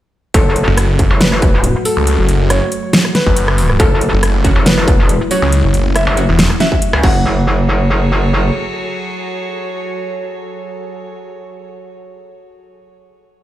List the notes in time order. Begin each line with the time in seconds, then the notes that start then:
0.34 F#1 F#3 A3 F#4 A4, kick, closed hi-hat
0.56 closed hi-hat
0.68 F#1
0.78 cross-stick, closed hi-hat
0.99 kick, closed hi-hat
1.11 F#1
1.21 B4, snare, closed hi-hat
1.32 cross-stick
1.42 kick, closed hi-hat
1.64 closed hi-hat
1.85 A4, open hi-hat
1.97 C#2
2.07 closed hi-hat
2.19 F#1
2.29 closed hi-hat
2.50 C#5, cross-stick, closed hi-hat
2.72 closed hi-hat
2.93 snare, closed hi-hat
3.05 cross-stick
3.15 B4, snare, closed hi-hat
3.27 F#1, kick
3.37 closed hi-hat
3.48 cross-stick
3.58 open hi-hat
3.70 cross-stick
3.80 F#1 E4 A4, kick, closed hi-hat
4.01 closed hi-hat
4.13 F#1
4.23 cross-stick, closed hi-hat
4.44 F#3 C#4 F#4, kick, closed hi-hat
4.56 F#1
4.66 B4, snare, closed hi-hat
4.78 cross-stick
4.88 kick, closed hi-hat
5.01 F1
5.09 closed hi-hat
5.31 F#3 C#4 F#4 C#5, open hi-hat
5.42 C#2
5.52 closed hi-hat
5.64 F#1
5.74 closed hi-hat
5.96 E5, cross-stick, closed hi-hat
6.07 F#1
6.17 F#3 C#4 F#4, closed hi-hat
6.29 E1
6.39 snare, closed hi-hat
6.50 cross-stick
6.60 F#3 C#4 F#4 E5, snare, closed hi-hat
6.72 kick
6.82 closed hi-hat
6.93 C#2, cross-stick
7.03 F#1 F#3 C#4 F#4 G#4 A4 C#5 F#5, kick, crash